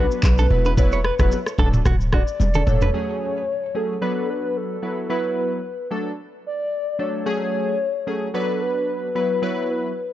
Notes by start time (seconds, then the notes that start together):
Already playing: F#3 B3 D4 B4
0.11 shaker
0.23 B1 B4, kick, clap, high bongo, shaker
0.38 A4, low bongo, shaker
0.50 E1 F#3 B3 E4 B4, high bongo, low conga
0.65 B4, low bongo, shaker
0.77 F#3 B3 E4 B4 C#5, kick, low conga, shaker
0.92 C#5, high bongo, shaker
1.04 B4, cross-stick
1.19 E1 F#3 B3 E4 B4, kick, cross-stick, shaker
1.32 high bongo, shaker
1.46 cross-stick, shaker
1.58 D1 F#3 A3 D4 A4, kick, low bongo
1.74 mid tom, shaker
1.86 D1 F#4, kick, cross-stick, low conga, shaker
2.01 shaker
2.13 F#4 D5, kick, cross-stick, low bongo
2.27 shaker
2.40 E1, high tom, high bongo, shaker
2.54 A4, mid tom, low bongo, shaker
2.67 E1 F#3 A3 D4 A4 C#5, mid tom, high bongo, low conga, shaker
2.81 B4, floor tom, low bongo, shaker
2.93 F#3 A3 C#4 G#4
3.75 F#3 A3 C#4 G#4 A4
4.01 F#3 B3 D4 A4 B4
4.30 B4
4.57 A4
4.82 F#3 B3 E4 B4
5.10 F#3 B3 E4 B4
5.38 B4
5.91 F#3 A3 D4 A4
6.46 D5
6.99 F#3 A3 D4 A4 C#5
7.26 F#3 A3 C#4 G#4
8.07 F#3 A3 C#4 G#4 A4
8.34 F#3 B3 D4 A4 B4
8.62 B4
8.89 B4
9.15 F#3 B3 E4 B4
9.42 F#3 B3 E4 B4 C#5
9.70 B4